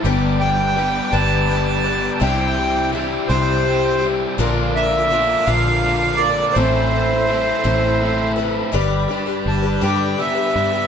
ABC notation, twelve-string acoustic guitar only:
X:1
M:6/8
L:1/16
Q:3/8=55
K:G
V:1 name="Twelve-string acoustic guitar"
[G,,D,G,B,DB]4 [G,B,DB]2 [G,,D,G,B,DB]4 [G,B,DB]2 | [C,G,DEG]4 [G,DEG]2 [C,G,DEG]4 [DEG]2 | [_B,,D,=F,_B,D_B]4 [F,B,DB]2 [B,,D,F,B,DB]4 [F,B,DB]2 | [A,,E,A,CE]4 [A,CE]2 [A,,E,A,CE]4 [A,CEB]2 |
[G,,D,G,DGB]2 [G,DGB] [G,DGB]2 [G,DGB] [G,,D,G,DGB]2 [G,DGB] [G,DGB]2 [G,DGB] |]